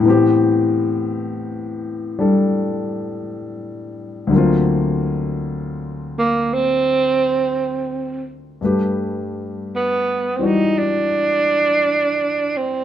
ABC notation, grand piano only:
X:1
M:4/4
L:1/8
Q:"Swing" 1/4=56
K:G
V:1 name="Grand piano"
[A,,E,B,CG]4 [G,DA]4 | [D,,D,F,^A,C^E]8 | [G,,A,GB]3 [E,G,Fd]4- [E,G,Fd] |]